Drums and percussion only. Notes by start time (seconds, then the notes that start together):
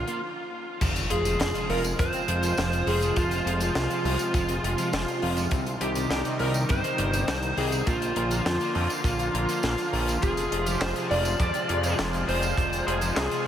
0.08 closed hi-hat
0.81 kick, closed hi-hat, crash, tambourine
0.96 closed hi-hat, tambourine
1.10 closed hi-hat
1.25 closed hi-hat, tambourine
1.40 snare, closed hi-hat, tambourine
1.55 closed hi-hat, tambourine
1.70 open hi-hat
1.84 closed hi-hat, tambourine
1.99 kick, closed hi-hat, tambourine
2.13 closed hi-hat, tambourine
2.28 closed hi-hat
2.43 closed hi-hat, tambourine
2.57 snare, closed hi-hat, tambourine
2.72 closed hi-hat, tambourine
2.87 open hi-hat
3.02 closed hi-hat, tambourine
3.16 kick, closed hi-hat, tambourine
3.31 closed hi-hat, tambourine
3.47 closed hi-hat
3.60 closed hi-hat, tambourine
3.75 snare, closed hi-hat, tambourine
3.90 closed hi-hat, tambourine
4.05 open hi-hat
4.19 closed hi-hat, tambourine
4.34 kick, closed hi-hat, tambourine
4.49 closed hi-hat, tambourine
4.64 closed hi-hat
4.78 closed hi-hat, tambourine
4.93 snare, closed hi-hat, tambourine
5.08 closed hi-hat, tambourine
5.22 open hi-hat
5.37 closed hi-hat, tambourine
5.51 kick, closed hi-hat, tambourine
5.66 closed hi-hat, tambourine
5.81 closed hi-hat
5.95 closed hi-hat, tambourine
6.10 snare, closed hi-hat, tambourine
6.25 closed hi-hat, tambourine
6.39 open hi-hat
6.54 closed hi-hat, tambourine
6.69 kick, closed hi-hat, tambourine
6.84 closed hi-hat, tambourine
6.98 closed hi-hat
7.13 closed hi-hat, tambourine
7.28 snare, closed hi-hat, tambourine
7.43 closed hi-hat, tambourine
7.57 open hi-hat
7.72 closed hi-hat, tambourine
7.87 kick, closed hi-hat, tambourine
8.02 closed hi-hat, tambourine
8.16 closed hi-hat
8.31 closed hi-hat, tambourine
8.46 snare, closed hi-hat, tambourine
8.61 closed hi-hat, tambourine
8.75 open hi-hat
8.90 closed hi-hat, tambourine
9.04 kick, closed hi-hat, tambourine
9.19 closed hi-hat, tambourine
9.35 closed hi-hat
9.49 closed hi-hat, tambourine
9.63 snare, closed hi-hat, tambourine
9.78 closed hi-hat, tambourine
9.93 open hi-hat
10.08 closed hi-hat, tambourine
10.22 kick, closed hi-hat, tambourine
10.37 closed hi-hat, tambourine
10.52 closed hi-hat
10.66 closed hi-hat, tambourine
10.81 snare, clap, closed hi-hat, tambourine
10.96 closed hi-hat, tambourine
11.11 open hi-hat
11.25 closed hi-hat, tambourine
11.40 kick, closed hi-hat, tambourine
11.54 closed hi-hat, tambourine
11.69 closed hi-hat
11.83 closed hi-hat, tambourine
11.99 snare, clap, closed hi-hat
12.13 closed hi-hat, tambourine
12.29 open hi-hat
12.42 closed hi-hat, tambourine
12.58 kick, closed hi-hat, tambourine
12.73 closed hi-hat, tambourine
12.88 closed hi-hat
13.01 closed hi-hat, tambourine
13.17 snare, clap, closed hi-hat
13.31 closed hi-hat, tambourine